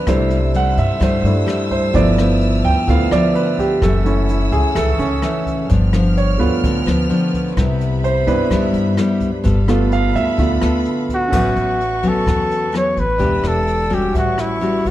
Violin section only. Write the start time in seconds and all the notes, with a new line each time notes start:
0.08 C5 A5 E6
1.93 B4 F6
3.81 A4 F#5 E6
5.69 B3 G5 F6
7.56 E5 B5
9.45 F4 A4 B5
11.30 B4 F#5 C#6
13.21 D5 E6
14.15 B4 F#5 C#6